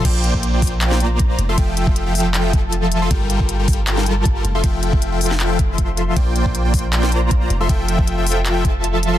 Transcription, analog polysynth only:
X:1
M:4/4
L:1/16
Q:"Swing 16ths" 1/4=157
K:F
V:1 name="Analog polysynth"
[B,Fcdg]2 [B,Fcdg]3 [B,Fcdg] [B,Fcdg]4 [B,Fcdb]4 z [F,FAec'] | [F,FAeg]2 [F,FAeg]3 [F,FAeg] [F,FAeg]4 [F,FAea]4- [F,FAea] [F,FAec'] | [G,FABg]2 [G,FABg]3 [G,FABg] [G,FABg]4 [G,FABa]4 z [F,FAec'] | [F,FAeg]2 [F,FAeg]3 [F,FAeg] [F,FAeg]4 z [F,FAec']4- [F,FAec'] |
[B,Fcdg]2 [B,Fcdg]3 [B,Fcdg] [B,Fcdg]4 [B,Fcdb]4 z [F,FAec'] | [F,FAeg]2 [F,FAeg]3 [F,FAeg] [F,FAeg]4 [F,FAea]4- [F,FAea] [F,FAec'] |]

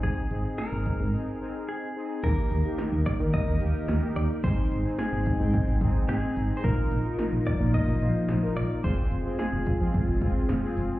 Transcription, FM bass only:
X:1
M:4/4
L:1/16
Q:1/4=109
K:Eb
V:1 name="FM bass" clef=bass
A,,, z A,,, z2 A,,, z A,, z8 | E,, z E,, z2 E,, z E, z E,, E,, z E,, z E,, z | A,,, z A,,, z2 A,,, z A,, z A,,, A,,, z A,,, z A,,, z | B,,, z B,,, z2 B,,, z B,, z B,,, B,,, z B,,, z B,,, z |
F,,, z F,,, z2 F,,, z F,, z F,,, F,,, z F,,, z F,,, z |]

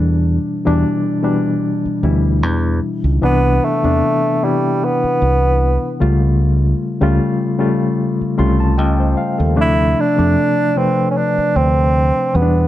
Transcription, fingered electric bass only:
X:1
M:4/4
L:1/16
Q:"Swing 16ths" 1/4=76
K:Ddor
V:1 name="Fingered electric bass" clef=bass
E,,2 z E,, z6 D,,2 E,,2 z _D,, | C,,2 z E,, z6 C,,3 z ^C,,2- | ^C,,2 z C,, z6 ^B,,,2 C,,2 z _E,, | D,,2 z F,, z6 D,,3 z E,,2 |]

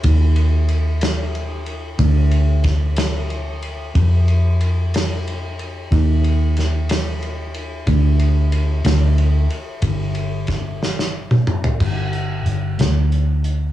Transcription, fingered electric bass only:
X:1
M:6/8
L:1/8
Q:3/8=61
K:Cdor
V:1 name="Fingered electric bass" clef=bass
E,,6 | D,,6 | F,,6 | E,,6 |
D,,3 D,,2 z | G,,,6 | G,,,2 G,,, D,,3 |]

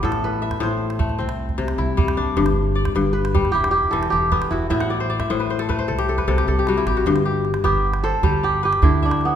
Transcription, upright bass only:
X:1
M:12/8
L:1/8
Q:3/8=102
K:G
V:1 name="Upright bass" clef=bass
A,,,3 A,,,3 C,,2 C,, C,,2 C,, | G,,,3 G,,,3 E,,,2 E,,, E,,,2 E,,, | A,,,3 A,,,3 C,,2 C,, C,,2 A,,, | G,,,3 G,,,3 G,,,3 D,,3 |]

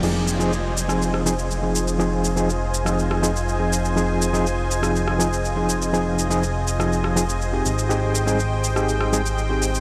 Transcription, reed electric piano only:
X:1
M:4/4
L:1/16
Q:1/4=122
K:Fm
V:1 name="Reed electric piano"
[F,CEA]3 [F,CEA] z3 [F,CEA]3 [F,CEA] z2 [F,CEA]3 | [F,CEA]3 [F,CEA] z3 [F,CEA]3 [F,CEA] z2 [F,CEA]3 | [F,CEA]3 [F,CEA] z3 [F,CEA]3 [F,CEA] z2 [F,CEA]3 | [F,CEA]3 [F,CEA] z3 [F,CEA]3 [F,CEA] z2 [CEGA]3 |
[CEGA]3 [G,CEA] z3 [CEGA]3 [G,CEA] z2 [CEGA]3 |]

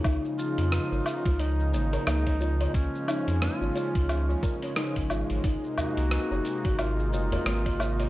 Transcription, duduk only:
X:1
M:4/4
L:1/8
Q:"Swing 16ths" 1/4=89
K:Db
V:1 name="Duduk"
z F3 E E3 | D2 F4 z2 | z G3 F F3 |]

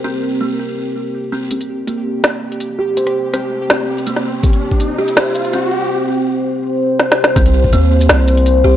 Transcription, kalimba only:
X:1
M:4/4
L:1/8
Q:"Swing 16ths" 1/4=164
K:Dblyd
V:1 name="Kalimba"
C z B, z4 C | C z B, z4 G | c2 C2 C z B, z | z3 G c2 C2 |
z8 | C z B, z4 G |]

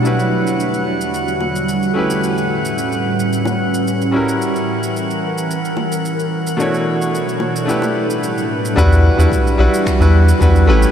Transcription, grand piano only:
X:1
M:4/4
L:1/16
Q:1/4=110
K:Edor
V:1 name="Grand piano"
[G,DEFB]12- [G,DEFB]2 [A,CEGB]2- | [A,CEGB]12- [A,CEGB]2 [G,CEF^A]2- | [G,CEF^A]16 | [B,,A,DEFc]8 [A,DEGB]8 |
[G,DEFB]3 [G,DEFB]3 [G,DEFB]3 [G,DEFB]3 [G,DEFB]2 [A,CEGB]2 |]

